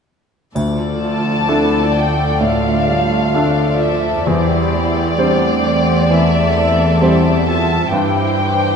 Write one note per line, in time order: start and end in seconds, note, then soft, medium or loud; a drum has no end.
0.55 1.46 D2 soft
0.55 4.24 D2 soft
0.55 2.38 F3 soft
0.55 1.45 F4 soft
0.55 3.31 A4 soft
0.55 3.31 D5 soft
0.55 triangle soft
1.03 1.91 A5 soft
1.48 2.37 A3 soft
1.48 2.37 D4 soft
1.48 1.95 E4 soft
1.48 2.38 A4 soft
1.94 2.41 D4 soft
1.94 2.41 G5 soft
2.40 3.91 A2 soft
2.40 2.89 A3 soft
2.40 4.29 F4 soft
2.40 3.81 F5 medium
2.89 3.36 G3 soft
3.34 4.29 F3 soft
3.34 4.24 A3 soft
3.34 4.24 D4 soft
3.34 4.26 A4 soft
3.34 4.24 A4 soft
3.34 4.26 D5 soft
3.81 4.28 E5 soft
4.27 5.16 E2 soft
4.27 7.88 E2 soft
4.27 4.75 G3 soft
4.27 5.20 E4 soft
4.27 5.18 G4 soft
4.27 5.19 C5 soft
4.27 7.46 D5 medium
4.75 5.19 A3 soft
5.18 6.07 G3 soft
5.18 6.99 A3 soft
5.18 6.07 C4 soft
5.18 5.65 D4 soft
5.18 6.10 G4 soft
5.18 6.07 C5 soft
5.18 6.10 C5 soft
5.66 7.92 C4 soft
6.11 7.56 E3 soft
6.11 7.92 A4 soft
6.11 7.02 E5 soft
7.02 7.88 G3 soft
7.02 7.48 G3 soft
7.02 7.88 C4 soft
7.02 7.88 C5 soft
7.02 7.91 E5 soft
7.47 7.93 F4 soft
7.47 7.91 A5 soft
7.92 8.76 G2 soft
7.92 8.76 E3 soft
7.92 8.38 E4 soft
7.92 8.76 G4 soft
7.92 8.76 C5 soft
7.92 8.76 G5 soft
8.39 8.76 D4 soft